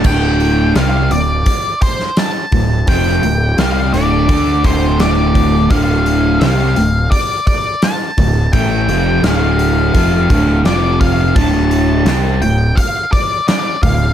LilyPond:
<<
  \new Staff \with { instrumentName = "Lead electric guitar" } { \time 4/4 \key d \minor \tempo 4 = 85 g''4 f''8 d''4 c''8 a''4 | g''4 f''8 d''4 c''8 d''4 | f''4 f''4 d''8 d''8 a''4 | g''4 f''2 d''8 f''8 |
a''4. g''8 f''8 d''8 d''8 f''8 | }
  \new Staff \with { instrumentName = "Overdriven electric guitar" } { \clef bass \time 4/4 \key d \minor <d, a, d>4 <c g c'>8 <d, a,>8 r4. <d, a,>8 | <f, c f>8 <d, a,>8 <c g c'>8 <d, a, d>8 <d a d'>8 <d, a, d>4. | <d, a, d>4 <c g c'>8 <d, a,>8 r4. <d, a,>8 | <a, e a>8 <f, c f>8 <d, a, d>4 <f, c f>8 <d, a, d>8 <f, c f>4 |
<d, a, d>4 <c g c'>8 <d, a,>8 r4. <d, a,>8 | }
  \new Staff \with { instrumentName = "Picked electric bass" } { \clef bass \time 4/4 \key d \minor d,,4 c,8 d,,8 r4. d,,8 | f,,8 d,,8 c,8 d,,8 d,8 d,,4. | d,,4 c,8 d,,8 r4. d,,8 | a,,8 f,,8 d,,4 f,,8 d,,8 f,,4 |
d,,4 c,8 d,,8 r4. d,,8 | }
  \new DrumStaff \with { instrumentName = "Drums" } \drummode { \time 4/4 <cymc bd>8 hho8 <hho sn>8 hho8 <hho bd>8 <hho bd>16 sn16 <hho sn>8 <hho bd>8 | <hho bd>8 hho8 <hho sn>8 <hho sn>8 <hho bd>8 <hho bd>8 <hho sn>8 <hho bd>8 | <hho bd>8 hho8 <hho sn>8 <hho sn>8 <hho bd>8 <hho bd>8 <hho sn>8 <hho bd>8 | <hho bd>8 hho8 <hho sn>8 hho8 <hho bd>8 <hho bd>8 <hho sn>8 <hho bd>8 |
<hho bd>8 hho8 <hho sn>8 hho8 <hho bd>8 <hho bd>8 <hho sn>8 <hho bd>8 | }
>>